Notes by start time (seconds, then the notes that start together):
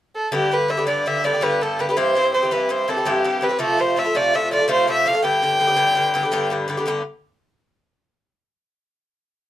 0.15 A4
0.32 G2 D3 B3 G4
0.51 G2 D3 B3 G4 B4
0.68 G2 D3 B3 G4 E5
0.77 D3 B3 G4
0.87 G2 D3 B3 G4 D5
1.06 G2 D3 B3 G4 E5
1.24 G2 D3 B3 G4 D5
1.33 D3 B3 G4
1.41 G2 D3 B3 G4 B4
1.61 G2 D3 B3 G4 A4
1.79 G2 D3 B3 G4 B4
1.89 D3 B3 G4 B4
1.97 G2 E3 C4 G4 C5
2.15 G2 E3 C4 G4
2.34 G2 E3 C4 G4 C5
2.43 E3 C4 G4
2.51 G2 E3 C4 G4 B4
2.69 G2 E3 C4 G4 C5
2.88 G2 E3 C4 G4 A4
2.96 E3 C4 G4
3.05 G2 E3 C4 G4
3.24 G2 E3 C4 G4
3.41 G2 E3 C4 G4 B4
3.49 E3 C4 G4
3.59 C3 F3 A3 F4 A4
3.77 C3 F3 A3 F4 C5
3.96 C3 F3 A3 F4 E5
4.05 F3 A3 F4
4.15 C3 F3 A3 F4 D5
4.34 C3 F3 A3 F4 E5
4.51 C3 F3 A3 F4 D5
4.59 F3 A3 F4
4.68 C3 F3 A3 F4 C5
4.87 C3 F3 A3 F4 E5
5.05 C3 F3 A3 F4 F5
5.13 F3 A3 F4
5.23 G2 D3 B3 G4 G5
5.42 G2 D3 B3 G4
5.59 G2 D3 B3 G4
5.67 D3 B3 G4
5.77 G2 D3 B3 G4
5.95 G2 D3 B3 G4
6.14 G2 D3 B3 G4
6.23 D3 B3 G4
6.32 G2 D3 B3 G4
6.50 G2 D3 B3 G4
6.68 G2 D3 B3 G4
6.77 D3 B3 G4
6.86 G2 D3 B3 G4